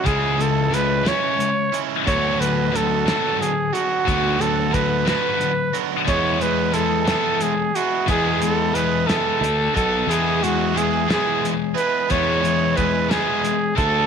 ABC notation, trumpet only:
X:1
M:6/8
L:1/8
Q:3/8=60
K:Emix
V:1 name="Trumpet"
G A B c2 z | c B A2 G F- | F A B B2 z | c B A2 G F |
G A B A2 A | G F G G z B | c2 B G2 A |]